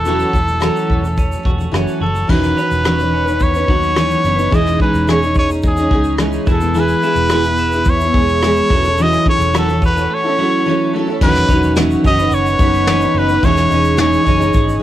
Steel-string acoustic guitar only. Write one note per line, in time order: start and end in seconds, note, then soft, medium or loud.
0.05 0.31 E3 medium
0.05 0.34 F#3 medium
0.05 0.34 C#4 medium
0.05 0.34 F#4 medium
0.05 0.34 A4 medium
0.32 0.46 E3 soft
0.32 0.49 F#3 medium
0.47 0.59 E3 medium
0.47 0.59 F#3 soft
0.60 1.00 E3 medium
0.60 1.03 F#3 medium
0.60 1.04 C#4 medium
0.60 1.04 F#4 medium
0.60 1.04 A4 loud
1.02 1.25 E3 soft
1.02 1.26 F#3 soft
1.31 1.42 E3 medium
1.31 1.46 F#3 medium
1.43 1.57 E3 medium
1.43 1.60 F#3 medium
1.58 1.70 E3 medium
1.58 1.71 F#3 medium
1.72 1.99 E3 medium
1.72 2.01 F#3 medium
1.72 2.01 C#4 medium
1.72 2.01 F#4 medium
1.72 2.02 A4 medium
2.00 2.13 E3 medium
2.00 2.15 F#3 medium
2.14 2.26 E3 soft
2.14 2.27 F#3 soft
2.28 2.56 E3 medium
2.28 2.55 F#3 medium
2.28 2.56 C#4 medium
2.28 2.57 D#4 medium
2.28 2.57 B4 medium
2.56 2.83 F#3 medium
2.56 2.83 C#4 medium
2.56 2.84 D#4 medium
2.56 2.84 B4 medium
2.83 2.98 E3 medium
2.83 2.99 F#3 medium
2.83 2.99 C#4 medium
2.83 2.98 D#4 medium
2.83 2.97 B4 medium
2.98 3.27 C#4 soft
2.98 3.26 D#4 soft
2.98 3.24 B4 soft
3.25 3.55 C#4 soft
3.25 3.54 D#4 soft
3.25 3.52 B4 soft
3.54 3.67 C#4 soft
3.54 3.67 D#4 soft
3.54 3.68 B4 medium
3.67 3.94 F#3 medium
3.67 3.96 C#4 medium
3.67 3.95 D#4 medium
3.67 3.96 B4 medium
3.95 4.24 E3 medium
3.95 4.23 F#3 medium
3.95 4.24 C#4 medium
3.95 4.24 D#4 medium
3.95 4.25 B4 medium
4.24 4.38 F#3 medium
4.24 4.37 C#4 medium
4.24 4.36 D#4 medium
4.24 4.35 B4 medium
4.36 4.50 C#4 soft
4.36 4.51 D#4 soft
4.36 4.51 B4 medium
4.51 4.79 E3 medium
4.51 4.77 G#3 medium
4.51 4.78 C#4 medium
4.51 4.79 D#4 medium
4.51 4.80 G#4 medium
4.78 5.07 G#3 medium
4.78 5.07 C#4 medium
4.78 5.07 D#4 medium
4.78 5.08 G#4 medium
5.07 5.22 E3 medium
5.07 5.22 G#3 medium
5.07 5.22 C#4 medium
5.07 5.21 D#4 medium
5.07 5.19 G#4 medium
5.20 5.51 C#4 soft
5.20 5.49 D#4 soft
5.20 5.48 G#4 medium
5.49 5.78 C#4 soft
5.49 5.77 D#4 soft
5.49 5.75 G#4 soft
5.76 5.90 C#4 soft
5.76 5.91 D#4 soft
5.76 5.91 G#4 medium
5.91 6.17 G#3 medium
5.91 6.17 C#4 medium
5.91 6.18 D#4 medium
5.91 6.18 G#4 medium
6.18 6.46 E3 medium
6.18 6.44 G#3 medium
6.18 6.47 C#4 medium
6.18 6.47 D#4 medium
6.18 6.47 G#4 medium
6.46 6.60 G#3 medium
6.46 6.61 B3 medium
6.46 6.60 E4 medium
6.46 6.59 G#4 medium
6.60 6.75 B3 soft
6.60 6.75 E4 medium
6.60 6.74 G#4 medium
6.75 7.03 E3 medium
6.75 7.02 G#3 medium
6.75 7.03 B3 medium
6.75 7.03 E4 medium
6.75 7.04 G#4 medium
7.03 7.30 G#3 medium
7.03 7.30 B3 medium
7.03 7.30 E4 medium
7.03 7.31 G#4 medium
7.30 7.44 E3 medium
7.30 7.45 G#3 medium
7.30 7.45 B3 medium
7.30 7.44 E4 medium
7.30 7.43 G#4 medium
7.44 7.73 B3 medium
7.44 7.73 E4 medium
7.44 7.72 G#4 medium
7.73 8.02 B3 soft
7.73 8.01 E4 soft
7.73 8.00 G#4 medium
8.02 8.14 B3 soft
8.02 8.15 E4 soft
8.02 8.15 G#4 soft
8.14 8.42 G#3 medium
8.14 8.43 B3 medium
8.14 8.43 E4 medium
8.14 8.43 G#4 medium
8.42 8.70 E3 medium
8.42 8.70 G#3 medium
8.42 8.71 B3 medium
8.42 8.71 E4 medium
8.42 8.71 G#4 medium
8.70 8.84 F#3 medium
8.70 8.85 C#4 medium
8.70 8.85 E4 medium
8.70 8.83 A4 medium
8.84 8.99 C#4 soft
8.84 8.99 E4 soft
8.84 8.98 A4 medium
8.99 9.26 E3 medium
8.99 9.24 F#3 medium
8.99 9.26 C#4 medium
8.99 9.27 E4 medium
8.99 9.27 A4 medium
9.25 9.53 F#3 medium
9.25 9.53 C#4 medium
9.25 9.54 E4 medium
9.25 9.54 A4 medium
9.53 9.67 E3 medium
9.53 9.68 F#3 medium
9.53 9.68 C#4 medium
9.53 9.67 E4 medium
9.53 9.66 A4 medium
9.67 9.96 C#4 soft
9.67 9.95 E4 soft
9.67 9.94 A4 medium
9.95 10.24 C#4 soft
9.95 10.23 E4 soft
9.95 10.22 A4 medium
10.23 10.37 C#4 soft
10.23 10.38 E4 medium
10.23 10.37 A4 medium
10.38 10.65 F#3 medium
10.38 10.65 C#4 medium
10.38 10.66 E4 medium
10.38 10.66 A4 medium
10.65 10.93 E3 medium
10.65 10.92 F#3 medium
10.65 10.93 C#4 medium
10.65 10.94 E4 medium
10.65 10.94 A4 medium
10.93 11.07 F#3 medium
10.93 11.07 C#4 medium
10.93 11.07 E4 medium
10.93 11.06 A4 medium
11.07 11.21 C#4 medium
11.07 11.21 E4 medium
11.07 11.21 A4 medium
11.21 11.49 E3 medium
11.21 11.48 F#3 medium
11.21 11.49 C#4 medium
11.21 11.49 D#4 medium
11.21 11.50 B4 medium
11.49 11.75 F#3 medium
11.49 11.75 C#4 medium
11.49 11.76 D#4 medium
11.49 11.76 B4 medium
11.76 12.04 E3 medium
11.76 12.03 F#3 medium
11.76 12.04 C#4 medium
11.76 12.05 D#4 medium
11.76 12.05 B4 medium
12.04 12.18 F#3 medium
12.04 12.18 C#4 medium
12.04 12.19 D#4 medium
12.04 12.17 B4 medium
12.18 12.59 C#4 soft
12.18 12.61 D#4 soft
12.18 12.60 B4 medium
12.60 12.86 F#3 medium
12.60 12.87 C#4 medium
12.60 12.87 D#4 medium
12.60 12.88 B4 medium
12.87 13.01 E3 medium
12.87 13.01 F#3 medium
12.87 13.02 C#4 medium
12.87 13.01 D#4 medium
12.87 12.99 B4 medium
13.01 13.15 C#4 soft
13.01 13.15 D#4 soft
13.01 13.15 B4 medium
13.15 13.29 F#3 medium
13.15 13.30 C#4 medium
13.15 13.29 D#4 medium
13.15 13.27 B4 medium
13.28 13.43 C#4 soft
13.28 13.43 D#4 medium
13.28 13.43 B4 medium
13.43 13.71 E3 medium
13.43 13.68 G#3 medium
13.43 13.69 C#4 medium
13.43 13.70 D#4 medium
13.43 13.71 G#4 medium
13.69 13.96 G#3 medium
13.69 13.96 C#4 medium
13.69 13.97 D#4 medium
13.69 13.97 G#4 medium
13.96 14.25 E3 medium
13.96 14.21 G#3 medium
13.96 14.23 C#4 medium
13.96 14.24 D#4 loud
13.96 14.24 G#4 medium
14.23 14.39 G#3 medium
14.23 14.39 C#4 medium
14.23 14.39 D#4 medium
14.23 14.36 G#4 medium
14.38 14.80 C#4 soft
14.38 14.81 D#4 medium
14.38 14.81 G#4 medium
14.80 14.83 G#3 medium